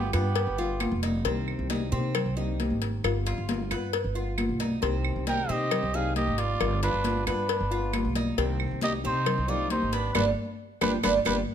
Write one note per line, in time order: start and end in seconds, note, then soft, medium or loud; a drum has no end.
0.00 0.15 G1 medium
0.00 0.12 G3 soft
0.00 0.13 B3 medium
0.00 0.12 F4 medium
0.00 0.14 G4 loud
0.13 0.45 G2 loud
0.13 0.99 B3 medium
0.13 0.35 B3 medium
0.13 0.35 F4 medium
0.13 0.99 G4 medium
0.13 0.57 B4 medium
0.13 cowbell medium
0.13 high conga soft
0.13 claves medium
0.36 muted nylon-string guitar stroke medium
0.36 cowbell loud
0.36 high conga soft
0.47 0.89 G1 medium
0.58 0.80 B3 medium
0.58 0.80 F4 medium
0.58 1.02 F4 medium
0.58 high conga soft
0.80 1.24 G3 medium
0.80 1.24 B3 medium
0.80 1.25 F4 medium
0.80 cowbell medium
0.80 high conga medium
0.80 claves medium
0.91 1.23 F1 loud
1.03 1.24 D#4 medium
1.03 cowbell medium
1.03 high conga medium
1.25 1.57 C2 loud
1.25 1.69 C3 medium
1.25 1.69 D#3 medium
1.25 1.69 A#3 medium
1.25 1.68 C4 medium
1.25 1.70 C4 medium
1.25 1.70 G4 medium
1.25 cowbell loud
1.25 high conga soft
1.48 high conga soft
1.48 claves medium
1.59 1.93 C2 medium
1.70 1.91 D#3 soft
1.70 1.92 A#3 medium
1.70 1.91 C4 medium
1.70 1.91 D#4 medium
1.70 1.91 G4 medium
1.70 cowbell medium
1.70 high conga loud
1.92 2.24 C3 loud
1.92 2.14 D#3 medium
1.92 2.14 A#3 medium
1.92 2.35 C4 medium
1.92 2.14 C4 medium
1.92 2.13 G4 medium
1.92 high conga soft
2.15 muted nylon-string guitar stroke medium
2.15 cowbell loud
2.15 high conga soft
2.15 low conga medium
2.15 claves medium
2.26 2.68 C2 medium
2.37 2.58 D#3 medium
2.37 2.59 A#3 medium
2.37 2.59 C4 medium
2.37 2.80 D#4 medium
2.37 2.58 G4 medium
2.37 high conga soft
2.37 low conga medium
2.60 3.03 D#3 medium
2.60 3.03 A#3 medium
2.60 3.04 C4 medium
2.60 3.04 G4 medium
2.60 cowbell medium
2.60 high conga medium
2.70 3.02 G#1 medium
2.82 cowbell medium
2.82 high conga soft
3.03 3.36 G1 loud
3.03 3.47 G3 medium
3.03 3.48 B3 medium
3.03 3.48 F4 medium
3.03 cowbell loud
3.03 claves medium
3.26 3.70 F4 medium
3.26 cowbell medium
3.26 high conga soft
3.38 3.72 G1 medium
3.49 3.70 G3 medium
3.49 3.70 B3 medium
3.49 3.70 F4 medium
3.49 cowbell medium
3.49 high conga loud
3.71 4.02 G2 medium
3.71 3.92 B3 medium
3.71 3.92 F4 medium
3.71 4.14 B4 medium
3.71 cowbell medium
3.71 high conga soft
3.71 claves medium
3.93 muted nylon-string guitar stroke medium
3.93 cowbell loud
3.93 high conga soft
4.04 4.47 G1 medium
4.15 4.37 B3 medium
4.15 4.36 F4 medium
4.15 4.59 F4 medium
4.15 high conga soft
4.37 4.81 G3 medium
4.37 4.81 B3 medium
4.37 4.82 F4 medium
4.37 cowbell medium
4.37 high conga medium
4.37 claves medium
4.49 4.81 B1 medium
4.60 4.81 D#4 medium
4.60 cowbell medium
4.60 high conga medium
4.82 5.14 C2 loud
4.82 5.26 C3 medium
4.82 5.25 D#3 medium
4.82 5.26 A#3 medium
4.82 5.25 C4 medium
4.82 5.26 C4 medium
4.82 5.27 G4 medium
4.82 cowbell loud
4.82 high conga soft
5.05 high conga soft
5.05 claves medium
5.16 5.50 C2 medium
5.27 5.48 D#3 soft
5.27 5.48 A#3 medium
5.27 5.49 C4 medium
5.27 5.48 D#4 medium
5.27 5.48 G4 medium
5.27 5.52 A#4 medium
5.27 5.52 G5 loud
5.27 cowbell medium
5.27 high conga loud
5.49 5.81 C3 medium
5.49 5.71 D#3 medium
5.49 5.71 A#3 medium
5.49 5.92 C4 medium
5.49 5.71 C4 medium
5.49 5.70 G4 medium
5.49 5.96 G4 medium
5.49 5.97 D#5 loud
5.49 high conga soft
5.71 muted nylon-string guitar stroke medium
5.71 cowbell loud
5.71 high conga soft
5.71 low conga medium
5.71 claves medium
5.83 6.25 C2 medium
5.94 6.15 D#3 medium
5.94 6.16 A#3 medium
5.94 6.15 C4 medium
5.94 6.37 D#4 medium
5.94 6.15 G4 medium
5.94 6.16 G#4 medium
5.94 6.16 F5 loud
6.16 6.59 D#3 soft
6.16 6.60 A#3 medium
6.16 6.60 C4 medium
6.16 6.40 G4 medium
6.16 6.60 G4 medium
6.16 6.41 D#5 loud
6.16 cowbell medium
6.16 high conga medium
6.27 6.59 G#1 medium
6.38 6.82 F4 medium
6.38 6.83 D5 medium
6.38 cowbell medium
6.38 high conga soft
6.60 6.92 G1 loud
6.60 7.04 G3 medium
6.60 7.04 B3 medium
6.60 7.04 F4 medium
6.60 cowbell loud
6.60 claves medium
6.83 7.24 D4 medium
6.83 7.26 F4 medium
6.83 7.24 B4 loud
6.83 cowbell medium
6.83 high conga soft
6.94 7.28 G1 medium
7.04 7.26 G3 medium
7.04 7.26 B3 medium
7.04 7.26 F4 medium
7.04 cowbell medium
7.04 high conga loud
7.27 7.58 G2 medium
7.27 7.48 B3 medium
7.27 8.12 D4 medium
7.27 7.48 F4 medium
7.27 7.70 B4 medium
7.27 8.12 B4 medium
7.27 cowbell medium
7.27 high conga soft
7.27 claves medium
7.49 muted nylon-string guitar stroke medium
7.49 cowbell loud
7.49 high conga soft
7.60 8.02 G1 medium
7.71 7.93 B3 medium
7.71 7.92 F4 medium
7.71 8.14 F4 medium
7.71 high conga soft
7.93 8.37 G3 medium
7.93 8.37 B3 medium
7.93 8.38 F4 medium
7.93 cowbell medium
7.93 high conga medium
7.93 claves medium
8.05 8.36 B1 medium
8.15 8.37 D#4 medium
8.15 cowbell medium
8.15 high conga medium
8.37 8.69 C2 loud
8.37 8.81 C3 medium
8.37 8.80 D#3 medium
8.37 8.81 A#3 medium
8.37 8.81 C4 medium
8.37 8.81 G4 medium
8.37 cowbell loud
8.37 high conga soft
8.60 high conga soft
8.60 claves medium
8.71 9.06 C2 medium
8.81 9.03 D#3 medium
8.81 9.04 A#3 medium
8.81 9.03 C4 medium
8.81 9.04 D#4 medium
8.81 8.93 G4 medium
8.81 9.03 G4 medium
8.81 8.93 D#5 loud
8.81 cowbell medium
8.81 high conga loud
9.04 9.36 C3 loud
9.04 9.26 D#3 medium
9.04 9.26 A#3 medium
9.04 9.25 C4 medium
9.04 9.47 C4 medium
9.04 9.51 D#4 medium
9.04 9.25 G4 medium
9.04 9.51 C5 loud
9.04 high conga soft
9.26 muted nylon-string guitar stroke medium
9.26 cowbell loud
9.26 high conga soft
9.26 low conga medium
9.26 claves medium
9.38 9.80 C2 medium
9.48 9.69 D#3 medium
9.48 9.70 A#3 medium
9.48 9.70 C4 medium
9.48 9.91 D#4 medium
9.48 9.71 F4 medium
9.48 9.70 G4 medium
9.48 9.71 D5 loud
9.48 high conga soft
9.48 low conga medium
9.70 10.14 D#3 medium
9.70 10.14 A#3 medium
9.70 10.15 C4 medium
9.70 9.95 D#4 medium
9.70 10.15 G4 medium
9.70 9.95 C5 medium
9.70 cowbell medium
9.70 high conga medium
9.82 10.13 G#1 medium
9.93 10.14 B3 medium
9.93 10.14 D4 medium
9.93 10.15 B4 medium
9.93 cowbell medium
9.93 high conga soft
10.15 10.31 G1 loud
10.15 10.29 G3 loud
10.15 10.29 B3 loud
10.15 10.25 D4 loud
10.15 10.29 D4 medium
10.15 10.30 D4 loud
10.15 10.29 F4 medium
10.15 10.29 G4 medium
10.15 10.26 B4 loud
10.15 cowbell loud
10.15 high conga loud
10.15 claves loud
10.81 10.98 G1 medium
10.81 10.95 G3 loud
10.81 10.95 B3 loud
10.81 10.92 D4 medium
10.81 10.95 D4 medium
10.81 10.96 D4 medium
10.81 10.96 F4 medium
10.81 10.96 G4 loud
10.81 10.93 B4 loud
10.81 cowbell loud
10.81 high conga loud
10.81 claves loud
11.03 11.20 G1 loud
11.03 11.17 G3 loud
11.03 11.17 B3 loud
11.03 11.18 D4 loud
11.03 11.17 D4 loud
11.03 11.14 D4 medium
11.03 11.18 F4 medium
11.03 11.18 G4 medium
11.03 11.15 B4 loud
11.03 cowbell loud
11.03 high conga loud
11.03 claves loud
11.25 11.42 G1 loud
11.25 11.40 G3 loud
11.25 11.40 B3 medium
11.25 11.36 D4 medium
11.25 11.40 D4 medium
11.25 11.40 D4 loud
11.25 11.40 F4 medium
11.25 11.40 G4 medium
11.25 11.37 B4 loud
11.25 cowbell loud
11.25 high conga loud
11.25 claves loud